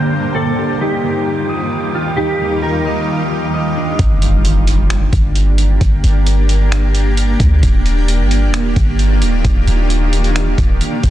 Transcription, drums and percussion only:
3.99 kick, closed hi-hat
4.22 closed hi-hat
4.45 closed hi-hat
4.67 closed hi-hat
4.90 finger snap, closed hi-hat
5.13 kick, closed hi-hat
5.35 closed hi-hat
5.58 closed hi-hat
5.81 kick, closed hi-hat
6.04 closed hi-hat
6.26 closed hi-hat
6.49 closed hi-hat
6.72 finger snap, closed hi-hat
6.95 closed hi-hat
7.17 closed hi-hat
7.40 kick, closed hi-hat
7.63 kick, closed hi-hat
7.86 closed hi-hat
8.08 closed hi-hat
8.31 closed hi-hat
8.54 finger snap, closed hi-hat
8.76 kick, closed hi-hat
8.99 closed hi-hat
9.22 closed hi-hat
9.45 kick, closed hi-hat
9.67 closed hi-hat
9.90 closed hi-hat
10.13 closed hi-hat
10.24 closed hi-hat
10.36 finger snap, closed hi-hat
10.58 kick, closed hi-hat
10.81 closed hi-hat
11.03 kick, closed hi-hat

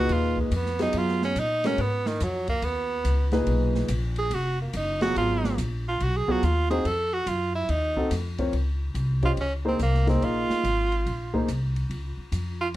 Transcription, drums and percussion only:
0.09 ride
0.37 kick
0.52 hi-hat pedal, ride
0.66 snare
0.79 snare, ride
0.93 ride
1.08 snare
1.22 snare
1.36 hi-hat pedal, ride
1.64 snare, ride
1.78 ride
2.06 snare
2.20 hi-hat pedal, ride
2.47 kick, ride
2.62 ride
3.05 hi-hat pedal, ride
3.31 snare, ride
3.47 ride
3.75 snare
3.88 hi-hat pedal, ride
4.16 ride
4.31 ride
4.73 hi-hat pedal, ride
5.01 snare, ride
5.16 ride
5.44 snare
5.58 hi-hat pedal, ride
6.00 ride
6.28 kick
6.43 hi-hat pedal, ride
6.71 ride
6.85 ride
7.27 hi-hat pedal, ride
7.69 ride
7.97 kick
8.11 snare, hi-hat pedal, ride
8.38 kick, ride
8.53 ride
8.95 hi-hat pedal, ride
9.22 kick, ride
9.37 ride
9.79 hi-hat pedal, ride
9.94 snare
10.07 snare, ride
10.22 ride
10.50 snare
10.64 hi-hat pedal, ride
10.92 ride
11.07 ride
11.34 kick
11.48 hi-hat pedal, ride
11.76 ride
11.91 ride
12.32 hi-hat pedal, ride

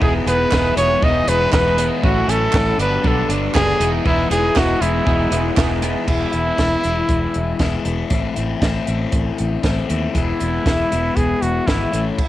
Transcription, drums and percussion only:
0.02 kick
0.27 closed hi-hat
0.52 kick, snare, clap
0.77 closed hi-hat
1.02 kick
1.28 closed hi-hat
1.53 kick, snare, clap
1.78 closed hi-hat
2.03 kick
2.29 closed hi-hat
2.53 kick, snare, clap
2.79 closed hi-hat
3.04 kick
3.30 closed hi-hat
3.55 kick, snare, clap
3.81 closed hi-hat
4.06 kick
4.31 closed hi-hat
4.56 kick, snare, clap
4.82 closed hi-hat
5.07 kick
5.32 closed hi-hat
5.57 kick, snare, clap
5.82 closed hi-hat
6.08 kick, crash
6.33 closed hi-hat
6.58 kick, snare, closed hi-hat
6.84 closed hi-hat
7.09 kick, closed hi-hat
7.34 closed hi-hat
7.59 kick, snare, closed hi-hat
7.85 closed hi-hat
8.10 kick, closed hi-hat
8.36 closed hi-hat
8.62 kick, snare, closed hi-hat
8.87 closed hi-hat
9.12 kick, closed hi-hat
9.38 closed hi-hat
9.64 kick, snare, closed hi-hat
9.90 closed hi-hat
10.15 kick, closed hi-hat
10.40 closed hi-hat
10.66 kick, snare, closed hi-hat
10.92 closed hi-hat
11.17 kick, closed hi-hat
11.42 closed hi-hat
11.67 kick, snare, closed hi-hat
11.93 closed hi-hat
12.18 kick, crash

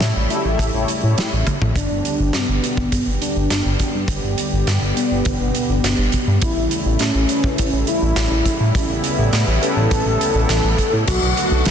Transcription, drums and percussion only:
0.01 snare, closed hi-hat
0.30 closed hi-hat
0.59 kick, closed hi-hat
0.88 closed hi-hat
1.18 snare, closed hi-hat
1.47 kick, closed hi-hat, high tom
1.62 mid tom
1.76 kick, closed hi-hat
2.05 closed hi-hat
2.33 snare, closed hi-hat
2.64 closed hi-hat
2.77 kick
2.92 kick, closed hi-hat
3.22 closed hi-hat
3.50 snare, closed hi-hat
3.79 kick, closed hi-hat
4.08 kick, closed hi-hat
4.38 closed hi-hat
4.67 snare, closed hi-hat
4.97 closed hi-hat
5.25 kick, closed hi-hat
5.55 closed hi-hat
5.84 snare, closed hi-hat
6.12 kick, closed hi-hat
6.42 kick, closed hi-hat
6.71 closed hi-hat
6.99 snare, closed hi-hat
7.29 closed hi-hat
7.44 kick
7.58 kick, closed hi-hat
7.87 closed hi-hat
8.16 snare, closed hi-hat
8.46 kick, closed hi-hat
8.75 kick, closed hi-hat
9.04 closed hi-hat
9.33 snare, closed hi-hat
9.63 closed hi-hat
9.91 kick, closed hi-hat
10.21 closed hi-hat
10.49 snare, closed hi-hat
10.78 kick, closed hi-hat
11.07 kick, closed hi-hat, crash
11.37 closed hi-hat
11.65 snare, closed hi-hat

